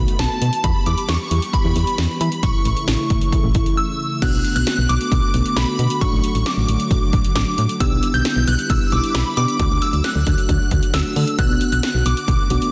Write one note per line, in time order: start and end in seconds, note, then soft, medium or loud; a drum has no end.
0.00 0.62 D#3 medium
0.00 0.62 A3 medium
0.00 0.62 B3 medium
0.00 0.62 F#4 medium
0.00 0.15 B5 medium
0.08 closed hi-hat soft
0.19 0.28 B1 loud
0.19 0.65 A5 medium
0.19 snare loud
0.19 closed hi-hat medium
0.42 0.50 B2 medium
0.42 closed hi-hat medium
0.53 closed hi-hat soft
0.64 0.73 E2 loud
0.64 4.19 E3 medium
0.64 2.41 G3 medium
0.64 2.41 B3 medium
0.64 2.41 G4 medium
0.64 0.87 B5 medium
0.64 kick loud
0.64 closed hi-hat medium
0.86 0.95 E2 loud
0.86 1.07 D6 medium
0.86 closed hi-hat medium
0.98 closed hi-hat medium
1.09 1.17 E2 loud
1.09 1.55 C#6 medium
1.09 snare loud
1.09 closed hi-hat medium
1.31 1.40 E2 loud
1.31 closed hi-hat medium
1.42 closed hi-hat soft
1.53 2.17 B5 medium
1.53 kick medium
1.53 closed hi-hat medium
1.65 1.73 E2 loud
1.76 1.85 E2 loud
1.76 closed hi-hat medium
1.87 closed hi-hat soft
1.98 2.07 E2 loud
1.98 snare loud
1.98 closed hi-hat medium
2.21 2.29 E3 loud
2.21 2.44 B5 medium
2.21 closed hi-hat medium
2.32 closed hi-hat soft
2.43 2.52 A1 loud
2.43 4.20 C#3 medium
2.43 4.20 A3 medium
2.43 4.20 E4 medium
2.43 3.96 C#6 medium
2.43 kick loud
2.43 closed hi-hat medium
2.65 2.74 A1 loud
2.65 closed hi-hat medium
2.77 closed hi-hat medium
2.88 2.97 A1 medium
2.88 snare loud
2.88 closed hi-hat medium
3.10 3.19 A1 medium
3.10 kick medium
3.10 closed hi-hat medium
3.21 closed hi-hat medium
3.32 kick medium
3.32 closed hi-hat medium
3.44 3.53 A1 loud
3.55 3.64 A1 loud
3.55 kick medium
3.55 closed hi-hat medium
3.66 closed hi-hat soft
3.77 4.24 E6 medium
4.22 4.31 B1 loud
4.22 9.55 D3 medium
4.22 5.99 A3 medium
4.22 5.99 B3 medium
4.22 5.98 B3 medium
4.22 5.98 D4 medium
4.22 7.77 F#4 medium
4.22 5.98 F#4 medium
4.22 4.55 F#6 loud
4.22 kick loud
4.22 closed hi-hat medium
4.22 crash medium
4.33 4.42 B1 medium
4.44 closed hi-hat medium
4.56 4.65 B1 medium
4.56 4.90 F#6 loud
4.56 closed hi-hat medium
4.67 snare loud
4.67 closed hi-hat medium
4.78 4.87 B1 medium
4.89 4.98 B1 loud
4.89 5.58 D6 medium
4.89 closed hi-hat medium
5.01 closed hi-hat soft
5.12 5.20 B1 loud
5.12 kick medium
5.12 closed hi-hat medium
5.34 5.43 B1 loud
5.34 closed hi-hat medium
5.46 closed hi-hat medium
5.57 5.65 B1 loud
5.57 6.03 B5 medium
5.57 snare loud
5.57 closed hi-hat medium
5.79 5.88 B2 medium
5.79 closed hi-hat medium
5.90 closed hi-hat medium
6.01 6.10 A1 loud
6.01 7.79 F#3 medium
6.01 7.79 A3 medium
6.01 7.77 A3 medium
6.01 7.77 D4 medium
6.01 7.77 F#4 medium
6.01 6.43 C#6 loud
6.01 kick loud
6.01 closed hi-hat medium
6.12 6.21 A1 medium
6.24 closed hi-hat medium
6.35 6.44 A1 medium
6.35 closed hi-hat medium
6.46 7.32 D6 medium
6.46 snare loud
6.46 closed hi-hat medium
6.57 6.66 A1 loud
6.68 6.77 A1 medium
6.68 closed hi-hat medium
6.80 closed hi-hat soft
6.91 6.99 A1 loud
6.91 kick medium
6.91 closed hi-hat medium
7.13 7.22 A1 loud
7.13 kick medium
7.13 closed hi-hat medium
7.24 closed hi-hat medium
7.36 7.44 A1 loud
7.36 7.82 D6 loud
7.36 snare loud
7.36 closed hi-hat medium
7.58 7.67 A2 loud
7.58 closed hi-hat medium
7.69 closed hi-hat medium
7.80 7.89 B1 loud
7.80 9.58 G3 medium
7.80 9.58 B3 medium
7.80 9.34 B3 medium
7.80 9.34 D4 medium
7.80 9.58 E4 medium
7.80 9.34 G4 medium
7.80 8.12 E6 loud
7.80 kick loud
7.80 closed hi-hat medium
7.92 8.00 B1 loud
8.03 closed hi-hat medium
8.14 8.23 B1 loud
8.14 8.49 G6 loud
8.14 closed hi-hat medium
8.25 snare loud
8.25 closed hi-hat medium
8.36 8.45 B1 loud
8.47 8.56 B1 loud
8.47 8.71 F#6 loud
8.47 closed hi-hat medium
8.59 closed hi-hat soft
8.70 8.79 B1 loud
8.70 8.93 E6 loud
8.70 kick medium
8.70 closed hi-hat medium
8.92 9.01 B1 loud
8.92 9.15 D6 medium
8.92 closed hi-hat medium
9.04 closed hi-hat soft
9.15 9.24 B1 loud
9.15 9.38 B5 medium
9.15 snare loud
9.15 closed hi-hat medium
9.37 9.46 B2 loud
9.37 9.60 B3 medium
9.37 9.58 D4 soft
9.37 9.60 G4 medium
9.37 9.83 D6 loud
9.37 closed hi-hat medium
9.48 closed hi-hat medium
9.59 9.68 D2 loud
9.59 12.72 D3 medium
9.59 11.37 F#3 medium
9.59 11.37 A3 medium
9.59 11.13 A3 medium
9.59 11.13 D4 medium
9.59 12.72 F#4 medium
9.59 11.13 F#4 medium
9.59 kick loud
9.59 closed hi-hat medium
9.71 9.79 D2 medium
9.82 10.03 E6 loud
9.82 closed hi-hat medium
9.93 10.02 D2 medium
9.93 closed hi-hat medium
10.04 10.97 F#6 loud
10.04 snare loud
10.04 closed hi-hat medium
10.15 10.24 D2 loud
10.27 10.35 D2 loud
10.27 kick medium
10.27 closed hi-hat medium
10.38 closed hi-hat medium
10.49 10.58 D2 loud
10.49 kick medium
10.49 closed hi-hat medium
10.71 10.80 D2 loud
10.71 kick medium
10.71 closed hi-hat medium
10.83 closed hi-hat medium
10.94 11.03 D2 loud
10.94 11.40 E6 loud
10.94 snare loud
10.94 closed hi-hat medium
11.16 11.25 D3 loud
11.16 11.39 A3 soft
11.16 11.37 D4 soft
11.16 11.39 A4 medium
11.16 open hi-hat medium
11.27 closed hi-hat medium
11.39 11.47 B1 loud
11.39 12.72 A3 medium
11.39 12.72 B3 medium
11.39 12.48 B3 medium
11.39 12.48 D4 medium
11.39 12.48 F#4 medium
11.39 11.71 F#6 loud
11.39 kick loud
11.39 closed hi-hat medium
11.50 11.59 B1 medium
11.61 closed hi-hat medium
11.72 11.81 B1 medium
11.72 12.07 F#6 loud
11.72 closed hi-hat medium
11.83 snare loud
11.83 closed hi-hat medium
11.95 12.03 B1 loud
12.06 12.14 B1 loud
12.06 12.72 D6 medium
12.06 closed hi-hat medium
12.17 closed hi-hat medium
12.28 12.37 B1 loud
12.28 kick medium
12.28 closed hi-hat medium
12.50 12.59 B1 loud
12.50 12.72 B3 medium
12.50 12.72 D4 soft
12.50 12.72 F#4 medium
12.50 closed hi-hat medium
12.62 closed hi-hat medium